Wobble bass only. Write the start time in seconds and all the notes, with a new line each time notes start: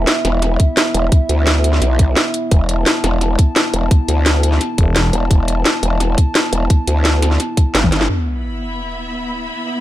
0.25 E1
0.94 E1
1.29 D2
1.82 B1
2.51 E1
3.04 E1
3.74 E1
4.08 D2
5.13 E1
5.31 E1
5.83 E1
6.53 E1
6.88 D2
7.75 G1